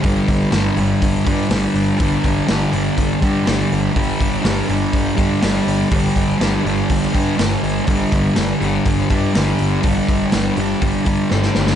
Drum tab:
HH |o-o-o-o-o-o-o-o-|o-o-o-o-o-o-o-o-|o-o-o-o-o-o-o-o-|o-o-o-o-o-o-o-o-|
SD |----o-------o---|----o-------o---|----o-------o---|----o-------o---|
BD |o-o-----o-o-----|o-o-----o-o-----|o-o-----o-o-----|o-o-----o-o-----|

HH |o-o-o-o-o-o-o-o-|o-o-o-o-o-o-----|
SD |----o-------o---|----o-------oooo|
BD |o-o-----o-o-----|o-o-----o-o-----|